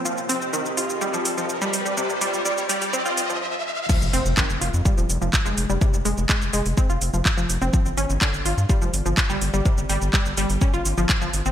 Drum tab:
CC |----------------|----------------|x---------------|----------------|
HH |--o---o---o---o-|--o---oo--o-----|--o---o---o---o-|--o---oo--o---o-|
SH |xxxxxxxxxxxxxxxx|xxxxxxxxxxxx----|xxxxxxxxxxxxxxxx|xxxxxxxxxxxxxxxx|
CP |----------------|----------------|----x-------x---|----x-------x---|
BD |----------------|----------------|o---o---o---o---|o---o---o---o---|

CC |----------------|----------------|
HH |--o---o---o---o-|--o---oo--o---o-|
SH |xxxxxxxxxxxxxxxx|xxxxxxxxxxxxxxxx|
CP |----x-------x---|----x-------x---|
BD |o---o---o---o---|o---o---o---o---|